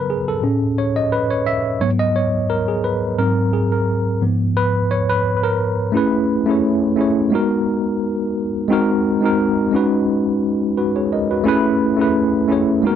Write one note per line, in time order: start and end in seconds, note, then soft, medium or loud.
0.00 0.45 C#3 medium
0.00 0.44 F#3 soft
0.00 0.45 B3 medium
0.00 0.44 A#4 medium
0.00 0.45 B4 medium
0.10 0.28 G#4 medium
0.28 0.79 A4 medium
0.42 0.89 A2 soft
0.42 0.90 C#4 medium
0.42 0.89 G#4 soft
0.78 0.97 C#5 medium
0.96 1.03 D#5 medium
1.12 1.31 B4 medium
1.30 1.45 C#5 medium
1.46 1.82 E5 loud
1.80 2.27 G#2 medium
1.80 2.28 F#3 medium
1.80 2.28 B3 medium
1.80 1.89 C#5 loud
1.99 2.16 D#5 loud
2.16 2.51 C#5 medium
2.50 2.69 A#4 medium
2.68 2.85 G#4 medium
2.84 3.00 B4 medium
3.18 3.65 G#2 medium
3.18 3.65 F#3 soft
3.18 3.66 C4 medium
3.18 3.54 A#4 medium
3.53 3.72 G#4 medium
3.72 4.04 A#4 medium
4.22 4.69 G#2 medium
4.22 4.69 F3 soft
4.22 4.69 B3 medium
4.57 4.92 B4 loud
4.91 5.10 C#5 loud
5.09 5.35 B4 medium
5.37 5.44 B4 medium
5.43 5.91 A#4 medium
5.92 6.35 A3 medium
5.92 6.36 C#4 medium
5.92 6.36 E4 medium
5.92 6.37 G#4 medium
5.97 6.37 B4 medium
6.46 6.88 A3 medium
6.46 6.88 C#4 medium
6.46 6.89 E4 medium
6.46 6.89 G#4 medium
6.51 6.90 C#5 medium
6.96 7.31 A3 medium
6.96 7.32 C#4 medium
6.96 7.33 E4 medium
6.96 7.33 G#4 medium
7.01 7.34 C#5 medium
7.30 8.42 G#3 medium
7.30 8.43 B3 medium
7.30 8.43 D#4 medium
7.30 8.44 F#4 medium
7.35 8.45 A#4 loud
8.68 9.11 G#3 loud
8.68 9.12 C4 medium
8.68 9.12 D#4 medium
8.68 9.13 F#4 medium
8.73 9.13 A#4 loud
9.21 9.63 G#3 medium
9.21 9.63 C4 medium
9.21 9.64 D#4 medium
9.21 9.65 F#4 medium
9.25 9.65 A#4 medium
9.71 10.83 G#3 medium
9.71 10.84 C#4 medium
9.71 10.85 D#4 medium
9.71 10.77 F#4 medium
9.76 10.76 B4 medium
10.78 10.95 F#4 medium
10.78 10.95 B4 medium
10.96 11.11 G#4 medium
10.96 11.11 C#5 medium
11.13 11.30 A#4 soft
11.13 11.30 D#5 medium
11.31 11.63 F#4 medium
11.31 11.47 B4 medium
11.44 11.87 A3 loud
11.44 11.87 C#4 medium
11.44 11.88 E4 loud
11.44 11.88 G#4 medium
11.48 11.89 B4 loud
11.97 12.39 A3 medium
11.97 12.39 C#4 medium
11.97 12.40 E4 medium
11.97 12.41 G#4 medium
12.01 12.41 B4 medium
12.48 12.83 A3 medium
12.48 12.84 C#4 medium
12.48 12.84 E4 medium
12.48 12.85 G#4 medium
12.52 12.85 C#5 medium
12.82 12.96 G#3 loud
12.82 12.91 A#3 medium
12.82 12.96 D#4 medium
12.82 12.96 F#4 medium
12.87 12.96 B3 medium
12.87 12.96 A#4 loud